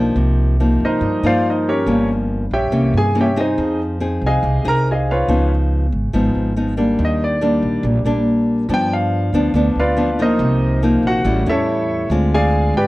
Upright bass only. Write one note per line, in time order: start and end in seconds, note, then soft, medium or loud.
0.00 0.14 B1 medium
0.16 0.76 C2 medium
0.80 1.00 G2 medium
1.01 1.21 G2 loud
1.23 1.83 G2 medium
1.86 2.47 G1 medium
2.51 2.71 A#1 medium
2.72 2.92 C2 medium
2.94 3.54 G2 medium
3.58 4.18 F2 medium
4.22 4.41 C2 medium
4.43 4.63 C2 medium
4.64 5.24 C2 medium
5.28 5.88 C#2 medium
5.92 6.12 G#1 medium
6.14 6.33 G#1 medium
6.35 6.95 G#1 medium
6.99 7.59 D#2 medium
7.62 7.82 A#1 medium
7.83 8.03 A#1 medium
8.05 8.65 A#1 medium
8.69 9.29 G2 medium
9.33 9.53 D2 medium
9.54 9.74 D2 loud
9.76 10.36 D2 medium
10.39 10.99 C2 loud
11.03 11.23 A#1 medium
11.24 11.45 A1 loud
11.46 12.06 E2 medium
12.10 12.70 D2 loud
12.74 12.87 G#2 medium